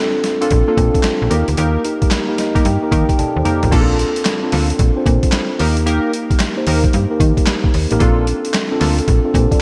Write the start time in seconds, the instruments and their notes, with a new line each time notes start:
Already playing: tine electric piano C4 D4 F4 A4
0.24 snare, closed hi-hat
0.41 analog polysynth A#3 D4 F4 A4, tine electric piano C4 D4 F4 A4, closed hi-hat
0.51 fm bass A#1, kick, closed hi-hat
0.68 analog polysynth A#3 D4 F4 A4
0.77 fm bass A#2, tine electric piano C4 D4 F4 A4, kick, closed hi-hat
0.95 kick, closed hi-hat
1.03 snare, clap, closed hi-hat
1.22 fm bass A#1
1.30 fm bass D#2, analog polysynth A#3 D#4 G4 A#4, tine electric piano A#3 D#4 G4 A#4, closed hi-hat
1.48 fm bass D2, closed hi-hat
1.57 fm bass D#2, analog polysynth A#3 D#4 G4 A#4, closed hi-hat
1.84 tine electric piano A#3 D#4 G4 A#4, closed hi-hat
2.02 fm bass G2, kick, closed hi-hat
2.11 snare, clap, closed hi-hat
2.28 tine electric piano A#3 D#4 G4 A#4
2.38 tine electric piano D#5, snare, closed hi-hat
2.55 analog polysynth A#3 D#4 G4 A#4, kick, closed hi-hat
2.65 fm bass G2, tine electric piano G5, closed hi-hat
2.82 tine electric piano A#3 D#4 G4 A#4
2.91 fm bass D#3, analog polysynth A#3 D#4 G4 A#4, kick, closed hi-hat
3.09 tine electric piano G5, kick, closed hi-hat
3.19 fm bass D#2, tine electric piano A4 D5 A5, closed hi-hat, high tom
3.36 fm bass D#2, tine electric piano G4 C5
3.45 analog polysynth A#3 D#4 G4 A#4, tine electric piano A#5, closed hi-hat, mid tom
3.63 fm bass A1, tine electric piano F4 A#4, closed hi-hat, floor tom
3.71 fm bass A#1, analog polysynth A#3 D4 F4 A4, tine electric piano C4 D4 F4 G#4, kick, closed hi-hat, crash
3.80 tine electric piano A4
3.99 closed hi-hat
4.16 closed hi-hat
4.25 snare, clap, closed hi-hat
4.42 tine electric piano C4 D4 F4 A4
4.52 fm bass D2, analog polysynth A#3 D4 F4 A4, snare, open hi-hat
4.70 closed hi-hat
4.79 fm bass A#1, kick, closed hi-hat
4.96 tine electric piano C4 D4 F4 C5
5.06 fm bass A#2, kick, closed hi-hat
5.23 kick, closed hi-hat
5.32 snare, clap, closed hi-hat
5.59 fm bass D#2, tine electric piano A#3 D#4 G4 A#4, analog polysynth A#3 D#4 G4 A#4, open hi-hat
5.77 closed hi-hat
5.86 analog polysynth A#3 D#4 G4 A#4, closed hi-hat
6.13 closed hi-hat
6.31 kick, closed hi-hat
6.39 snare, clap, closed hi-hat
6.56 tine electric piano A#3 D#4 G4 C5
6.67 fm bass D#2, analog polysynth A#3 D#4 G4 A#4, open hi-hat
6.84 kick, closed hi-hat
6.93 fm bass G2, closed hi-hat
7.10 tine electric piano A#3 D#4 G4 A#4
7.20 fm bass D#3, kick, closed hi-hat
7.37 kick, closed hi-hat
7.46 snare, clap, closed hi-hat
7.64 kick
7.74 fm bass D#2, open hi-hat
7.91 fm bass A1, tine electric piano A#3 D#4 G4 A#4, closed hi-hat
8.00 fm bass A#1, analog polysynth A#3 D4 F4 A4, tine electric piano C4 D4 F4 A4, kick, closed hi-hat
8.27 closed hi-hat
8.45 closed hi-hat
8.54 snare, clap, closed hi-hat
8.71 tine electric piano C4 D4 F4 A4
8.80 fm bass D2, analog polysynth A#3 D4 F4 A4, snare, open hi-hat
8.99 closed hi-hat
9.08 fm bass A#1, kick, closed hi-hat
9.24 tine electric piano C4 D4 F4 A4
9.34 fm bass A#2, tine electric piano G4 C5, kick, closed hi-hat
9.51 tine electric piano A4 D5, kick, closed hi-hat